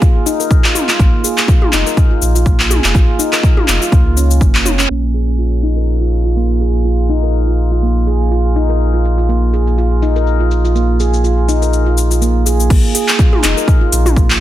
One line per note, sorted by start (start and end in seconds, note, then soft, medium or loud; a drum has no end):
0.02 0.15 F4 medium
0.02 kick loud
0.02 shaker soft
0.26 0.34 D#4 loud
0.26 shaker medium
0.40 0.50 A#4 medium
0.40 shaker medium
0.51 kick loud
0.51 shaker soft
0.64 0.75 F4 medium
0.64 clap medium
0.75 mid tom medium
0.75 shaker medium
0.89 0.98 F4 medium
0.89 clap medium
0.89 shaker medium
0.99 1.10 A#1 loud
0.99 1.12 A#3 medium
0.99 kick loud
0.99 shaker soft
1.24 1.37 G#4 medium
1.24 shaker medium
1.38 clap medium
1.38 shaker soft
1.48 1.61 F4 medium
1.48 kick loud
1.48 shaker soft
1.62 mid tom loud
1.73 1.84 F1 medium
1.73 1.80 D#4 loud
1.73 clap medium
1.73 shaker medium
1.86 1.96 A#4 medium
1.86 shaker medium
1.97 kick loud
1.97 shaker soft
2.11 2.21 F4 medium
2.22 2.79 A#1 medium
2.22 shaker medium
2.35 2.45 F4 medium
2.35 shaker medium
2.46 2.58 A#3 medium
2.46 kick loud
2.46 shaker soft
2.60 clap loud
2.70 2.83 G#4 medium
2.70 mid tom medium
2.70 shaker medium
2.84 2.93 F1 loud
2.84 clap medium
2.84 shaker medium
2.95 3.06 A#1 loud
2.95 3.08 F4 medium
2.95 kick loud
2.95 shaker soft
3.19 3.26 D#4 loud
3.19 shaker medium
3.33 3.42 A#4 medium
3.33 clap medium
3.33 shaker soft
3.43 kick loud
3.43 shaker soft
3.57 3.67 F4 medium
3.57 mid tom loud
3.68 3.79 F1 medium
3.68 clap medium
3.68 shaker medium
3.81 3.91 F4 medium
3.81 shaker medium
3.92 4.43 C#2 loud
3.92 4.05 A#3 medium
3.92 kick loud
3.92 shaker soft
4.17 4.30 C#4 medium
4.17 shaker medium
4.31 shaker soft
4.41 4.86 F1 medium
4.41 4.53 A#3 medium
4.41 kick loud
4.41 shaker soft
4.55 clap loud
4.66 4.73 C#4 medium
4.66 mid tom medium
4.66 shaker medium
4.79 4.89 C#4 loud
4.79 clap loud
4.79 shaker medium
4.90 12.68 A#1 medium
4.90 5.02 A#3 medium
5.14 5.27 G#4 medium
5.38 5.51 F4 medium
5.38 shaker soft
5.63 5.70 D#4 loud
5.63 shaker medium
5.77 5.86 A#4 medium
5.77 shaker soft
5.88 shaker soft
6.01 6.11 F4 medium
6.12 shaker medium
6.25 6.35 F4 medium
6.25 shaker soft
6.36 6.48 A#3 medium
6.36 shaker soft
6.61 6.73 G#4 medium
6.61 shaker medium
6.75 shaker soft
6.85 6.98 F4 medium
6.85 shaker soft
7.09 7.17 D#4 loud
7.09 shaker medium
7.23 7.33 A#4 medium
7.23 shaker medium
7.34 shaker soft
7.47 7.58 F4 medium
7.59 shaker medium
7.72 7.82 F4 medium
7.72 shaker medium
7.83 7.95 A#3 medium
7.83 shaker soft
8.07 8.20 G#4 medium
8.07 shaker medium
8.21 shaker medium
8.32 8.44 F4 medium
8.32 shaker soft
8.56 8.63 D#4 loud
8.56 shaker medium
8.69 8.79 A#4 medium
8.69 shaker medium
8.80 shaker soft
8.94 9.04 F4 medium
9.05 shaker loud
9.18 9.28 F4 medium
9.18 shaker medium
9.29 9.41 A#3 medium
9.29 shaker soft
9.53 9.66 G#4 medium
9.53 shaker medium
9.67 shaker medium
9.78 9.91 F4 medium
9.78 shaker soft
10.02 10.09 D#4 medium
10.02 shaker medium
10.16 10.26 A#4 medium
10.16 shaker medium
10.27 shaker soft
10.40 10.50 F4 medium
10.51 shaker medium
10.65 10.74 F4 medium
10.65 shaker medium
10.75 10.87 A#3 medium
10.75 shaker soft
11.00 11.13 G#4 medium
11.00 shaker medium
11.14 shaker medium
11.24 11.37 F4 medium
11.24 shaker soft
11.49 11.56 D#4 loud
11.49 shaker medium
11.62 11.72 A#4 medium
11.62 shaker medium
11.73 shaker soft
11.86 11.97 F4 medium
11.98 shaker medium
12.11 12.21 F4 medium
12.11 shaker medium
12.22 12.34 A#3 medium
12.22 shaker soft
12.46 12.59 G#4 medium
12.46 shaker medium
12.60 shaker medium
12.70 12.81 A#1 loud
12.70 kick loud
12.70 crash loud
12.70 shaker soft
12.95 13.08 G#4 medium
12.95 open hi-hat loud
12.95 shaker medium
13.08 clap loud
13.08 shaker medium
13.19 13.32 F4 medium
13.19 kick loud
13.19 shaker soft
13.33 mid tom loud
13.44 13.54 F1 medium
13.44 13.51 D#4 loud
13.44 clap medium
13.44 open hi-hat medium
13.44 shaker medium
13.57 13.67 A#4 medium
13.57 shaker medium
13.68 kick loud
13.68 shaker soft
13.81 13.92 F4 medium
13.92 14.40 A#1 medium
13.92 open hi-hat medium
13.92 shaker medium
14.06 14.15 F4 medium
14.06 mid tom medium
14.06 shaker medium
14.16 14.29 A#3 medium
14.16 kick loud
14.16 shaker soft
14.30 clap loud